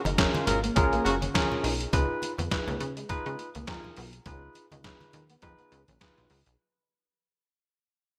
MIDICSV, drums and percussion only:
0, 0, Header, 1, 2, 480
1, 0, Start_track
1, 0, Tempo, 582524
1, 1591, Time_signature, 4, 2, 24, 8
1, 6742, End_track
2, 0, Start_track
2, 0, Title_t, "Drums"
2, 41, Note_on_c, 9, 63, 80
2, 49, Note_on_c, 9, 42, 49
2, 124, Note_off_c, 9, 63, 0
2, 131, Note_off_c, 9, 42, 0
2, 148, Note_on_c, 9, 62, 30
2, 151, Note_on_c, 9, 36, 107
2, 151, Note_on_c, 9, 42, 87
2, 152, Note_on_c, 9, 38, 102
2, 161, Note_on_c, 9, 39, 79
2, 231, Note_off_c, 9, 62, 0
2, 233, Note_off_c, 9, 36, 0
2, 233, Note_off_c, 9, 42, 0
2, 234, Note_off_c, 9, 38, 0
2, 244, Note_off_c, 9, 39, 0
2, 284, Note_on_c, 9, 63, 101
2, 289, Note_on_c, 9, 42, 37
2, 367, Note_off_c, 9, 63, 0
2, 371, Note_off_c, 9, 42, 0
2, 389, Note_on_c, 9, 42, 89
2, 391, Note_on_c, 9, 62, 36
2, 391, Note_on_c, 9, 64, 78
2, 471, Note_off_c, 9, 42, 0
2, 473, Note_off_c, 9, 62, 0
2, 473, Note_off_c, 9, 64, 0
2, 526, Note_on_c, 9, 42, 54
2, 608, Note_off_c, 9, 42, 0
2, 627, Note_on_c, 9, 42, 86
2, 633, Note_on_c, 9, 36, 127
2, 633, Note_on_c, 9, 62, 35
2, 633, Note_on_c, 9, 63, 75
2, 710, Note_off_c, 9, 42, 0
2, 715, Note_off_c, 9, 36, 0
2, 715, Note_off_c, 9, 62, 0
2, 715, Note_off_c, 9, 63, 0
2, 764, Note_on_c, 9, 42, 38
2, 846, Note_off_c, 9, 42, 0
2, 871, Note_on_c, 9, 62, 30
2, 875, Note_on_c, 9, 42, 66
2, 954, Note_off_c, 9, 62, 0
2, 957, Note_off_c, 9, 42, 0
2, 1007, Note_on_c, 9, 42, 49
2, 1008, Note_on_c, 9, 63, 74
2, 1089, Note_off_c, 9, 42, 0
2, 1090, Note_off_c, 9, 63, 0
2, 1111, Note_on_c, 9, 62, 39
2, 1111, Note_on_c, 9, 63, 66
2, 1114, Note_on_c, 9, 36, 109
2, 1114, Note_on_c, 9, 42, 79
2, 1116, Note_on_c, 9, 38, 114
2, 1125, Note_on_c, 9, 39, 85
2, 1193, Note_off_c, 9, 62, 0
2, 1193, Note_off_c, 9, 63, 0
2, 1196, Note_off_c, 9, 36, 0
2, 1196, Note_off_c, 9, 42, 0
2, 1198, Note_off_c, 9, 38, 0
2, 1207, Note_off_c, 9, 39, 0
2, 1249, Note_on_c, 9, 64, 66
2, 1332, Note_off_c, 9, 64, 0
2, 1352, Note_on_c, 9, 46, 82
2, 1435, Note_off_c, 9, 46, 0
2, 1488, Note_on_c, 9, 42, 58
2, 1570, Note_off_c, 9, 42, 0
2, 1589, Note_on_c, 9, 62, 30
2, 1589, Note_on_c, 9, 64, 72
2, 1592, Note_on_c, 9, 36, 121
2, 1593, Note_on_c, 9, 42, 109
2, 1672, Note_off_c, 9, 62, 0
2, 1672, Note_off_c, 9, 64, 0
2, 1675, Note_off_c, 9, 36, 0
2, 1676, Note_off_c, 9, 42, 0
2, 1829, Note_on_c, 9, 62, 39
2, 1836, Note_on_c, 9, 42, 73
2, 1911, Note_off_c, 9, 62, 0
2, 1918, Note_off_c, 9, 42, 0
2, 1964, Note_on_c, 9, 63, 73
2, 1970, Note_on_c, 9, 42, 58
2, 2047, Note_off_c, 9, 63, 0
2, 2053, Note_off_c, 9, 42, 0
2, 2071, Note_on_c, 9, 42, 87
2, 2072, Note_on_c, 9, 36, 112
2, 2073, Note_on_c, 9, 38, 99
2, 2082, Note_on_c, 9, 39, 75
2, 2154, Note_off_c, 9, 36, 0
2, 2154, Note_off_c, 9, 42, 0
2, 2155, Note_off_c, 9, 38, 0
2, 2164, Note_off_c, 9, 39, 0
2, 2205, Note_on_c, 9, 63, 90
2, 2210, Note_on_c, 9, 42, 37
2, 2287, Note_off_c, 9, 63, 0
2, 2293, Note_off_c, 9, 42, 0
2, 2311, Note_on_c, 9, 42, 80
2, 2313, Note_on_c, 9, 62, 31
2, 2313, Note_on_c, 9, 64, 68
2, 2394, Note_off_c, 9, 42, 0
2, 2395, Note_off_c, 9, 62, 0
2, 2395, Note_off_c, 9, 64, 0
2, 2446, Note_on_c, 9, 42, 54
2, 2529, Note_off_c, 9, 42, 0
2, 2549, Note_on_c, 9, 42, 79
2, 2553, Note_on_c, 9, 36, 127
2, 2554, Note_on_c, 9, 62, 39
2, 2554, Note_on_c, 9, 63, 77
2, 2631, Note_off_c, 9, 42, 0
2, 2635, Note_off_c, 9, 36, 0
2, 2636, Note_off_c, 9, 62, 0
2, 2636, Note_off_c, 9, 63, 0
2, 2685, Note_on_c, 9, 42, 38
2, 2767, Note_off_c, 9, 42, 0
2, 2793, Note_on_c, 9, 42, 61
2, 2794, Note_on_c, 9, 62, 30
2, 2875, Note_off_c, 9, 42, 0
2, 2876, Note_off_c, 9, 62, 0
2, 2924, Note_on_c, 9, 42, 56
2, 2927, Note_on_c, 9, 63, 82
2, 3006, Note_off_c, 9, 42, 0
2, 3010, Note_off_c, 9, 63, 0
2, 3027, Note_on_c, 9, 42, 77
2, 3029, Note_on_c, 9, 38, 115
2, 3029, Note_on_c, 9, 62, 40
2, 3029, Note_on_c, 9, 63, 62
2, 3032, Note_on_c, 9, 36, 111
2, 3038, Note_on_c, 9, 39, 97
2, 3109, Note_off_c, 9, 42, 0
2, 3111, Note_off_c, 9, 38, 0
2, 3111, Note_off_c, 9, 62, 0
2, 3111, Note_off_c, 9, 63, 0
2, 3115, Note_off_c, 9, 36, 0
2, 3120, Note_off_c, 9, 39, 0
2, 3167, Note_on_c, 9, 64, 70
2, 3250, Note_off_c, 9, 64, 0
2, 3267, Note_on_c, 9, 46, 70
2, 3270, Note_on_c, 9, 62, 35
2, 3350, Note_off_c, 9, 46, 0
2, 3353, Note_off_c, 9, 62, 0
2, 3402, Note_on_c, 9, 42, 59
2, 3485, Note_off_c, 9, 42, 0
2, 3508, Note_on_c, 9, 42, 111
2, 3509, Note_on_c, 9, 64, 75
2, 3510, Note_on_c, 9, 36, 127
2, 3590, Note_off_c, 9, 42, 0
2, 3592, Note_off_c, 9, 64, 0
2, 3593, Note_off_c, 9, 36, 0
2, 3748, Note_on_c, 9, 62, 38
2, 3752, Note_on_c, 9, 42, 75
2, 3830, Note_off_c, 9, 62, 0
2, 3834, Note_off_c, 9, 42, 0
2, 3885, Note_on_c, 9, 63, 87
2, 3888, Note_on_c, 9, 42, 58
2, 3967, Note_off_c, 9, 63, 0
2, 3971, Note_off_c, 9, 42, 0
2, 3990, Note_on_c, 9, 42, 95
2, 3990, Note_on_c, 9, 62, 30
2, 3991, Note_on_c, 9, 36, 100
2, 3991, Note_on_c, 9, 38, 107
2, 4001, Note_on_c, 9, 39, 75
2, 4072, Note_off_c, 9, 62, 0
2, 4073, Note_off_c, 9, 42, 0
2, 4074, Note_off_c, 9, 36, 0
2, 4074, Note_off_c, 9, 38, 0
2, 4083, Note_off_c, 9, 39, 0
2, 4125, Note_on_c, 9, 63, 95
2, 4129, Note_on_c, 9, 42, 38
2, 4207, Note_off_c, 9, 63, 0
2, 4211, Note_off_c, 9, 42, 0
2, 4229, Note_on_c, 9, 42, 86
2, 4230, Note_on_c, 9, 64, 69
2, 4311, Note_off_c, 9, 42, 0
2, 4313, Note_off_c, 9, 64, 0
2, 4364, Note_on_c, 9, 42, 52
2, 4446, Note_off_c, 9, 42, 0
2, 4466, Note_on_c, 9, 42, 84
2, 4472, Note_on_c, 9, 36, 127
2, 4474, Note_on_c, 9, 62, 38
2, 4474, Note_on_c, 9, 63, 77
2, 4549, Note_off_c, 9, 42, 0
2, 4554, Note_off_c, 9, 36, 0
2, 4556, Note_off_c, 9, 62, 0
2, 4556, Note_off_c, 9, 63, 0
2, 4602, Note_on_c, 9, 42, 38
2, 4685, Note_off_c, 9, 42, 0
2, 4713, Note_on_c, 9, 42, 68
2, 4796, Note_off_c, 9, 42, 0
2, 4846, Note_on_c, 9, 42, 50
2, 4846, Note_on_c, 9, 63, 85
2, 4928, Note_off_c, 9, 42, 0
2, 4928, Note_off_c, 9, 63, 0
2, 4950, Note_on_c, 9, 62, 39
2, 4950, Note_on_c, 9, 63, 60
2, 4952, Note_on_c, 9, 42, 82
2, 4954, Note_on_c, 9, 36, 112
2, 4954, Note_on_c, 9, 38, 125
2, 4963, Note_on_c, 9, 39, 89
2, 5032, Note_off_c, 9, 62, 0
2, 5032, Note_off_c, 9, 63, 0
2, 5034, Note_off_c, 9, 42, 0
2, 5036, Note_off_c, 9, 36, 0
2, 5036, Note_off_c, 9, 38, 0
2, 5046, Note_off_c, 9, 39, 0
2, 5087, Note_on_c, 9, 64, 62
2, 5090, Note_on_c, 9, 42, 40
2, 5170, Note_off_c, 9, 64, 0
2, 5172, Note_off_c, 9, 42, 0
2, 5189, Note_on_c, 9, 62, 38
2, 5190, Note_on_c, 9, 46, 75
2, 5271, Note_off_c, 9, 62, 0
2, 5272, Note_off_c, 9, 46, 0
2, 5326, Note_on_c, 9, 42, 62
2, 5408, Note_off_c, 9, 42, 0
2, 6742, End_track
0, 0, End_of_file